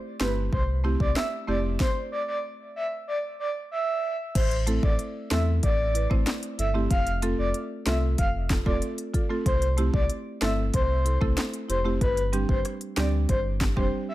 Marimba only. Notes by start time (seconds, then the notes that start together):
0.20 A3 C4 E4 G4
0.84 A3 C4 E4 G4
1.47 A3 C4 E4 G4
4.67 A3 C4 E4 A4
5.31 A3 C4 E4 A4
5.94 E4 B4
6.10 A3 C4 E4 C5
6.58 E4 A4
6.74 A3 C4 E4 G4
7.22 A3 C4 F4 A4
7.86 A3 C4 F4 A4
8.50 F4 A4
8.66 A3 C4 F4 A4
9.14 F4 A4
9.30 A3 C4 F4 A4
9.77 A3 C4 E4 G4
10.41 A3 C4 E4 A4
11.05 E4 A4
11.21 A3 C4 E4 A4
11.69 E4 G4
11.85 A3 C4 E4 G4
12.33 G3 C4 D4 G4
12.96 G3 C4 D4 G4
13.60 D4 G4
13.76 G3 C4 D4 G4